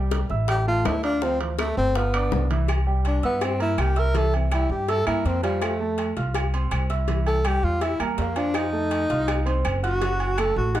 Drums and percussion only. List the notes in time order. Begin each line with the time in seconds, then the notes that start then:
0.11 high bongo, high timbale
0.30 high bongo
0.48 high bongo, high timbale, claves
0.85 high bongo, low bongo, high timbale, low timbale, claves
1.03 high bongo, high timbale
1.22 high bongo
1.40 high bongo, high timbale
1.59 high bongo, high timbale, claves
1.77 high bongo
1.95 high bongo, high timbale
2.14 high timbale, claves
2.32 high bongo, low bongo
2.51 high bongo, high timbale
2.68 cowbell, low agogo, claves
3.05 cowbell, low agogo
3.23 cowbell
3.41 cowbell, low agogo, claves
3.60 low agogo
3.78 cowbell, low agogo, claves
3.96 cowbell
4.15 cowbell, low agogo
4.34 low agogo
4.51 cowbell, low agogo, claves
4.88 cowbell, low agogo
5.07 low agogo, claves
5.26 cowbell
5.44 cowbell, low agogo
5.62 cowbell, low agogo, claves
5.98 cowbell, low agogo
6.17 cowbell
6.34 cowbell, low agogo, claves
6.54 low agogo
6.71 cowbell, low agogo, claves
6.90 cowbell
7.08 cowbell, low agogo
7.27 low agogo
7.45 cowbell, low agogo, claves
7.81 cowbell, low agogo
8.00 low agogo, claves
8.18 cowbell, low timbale
8.36 cowbell, low agogo
8.54 cowbell, low agogo, claves
8.91 cowbell, low agogo
9.10 cowbell
9.28 cowbell, low agogo, claves
9.47 low agogo
9.65 cowbell, low agogo, claves
9.84 cowbell
10.02 cowbell, low agogo
10.20 low agogo
10.38 cowbell, low agogo, claves
10.75 cowbell, low agogo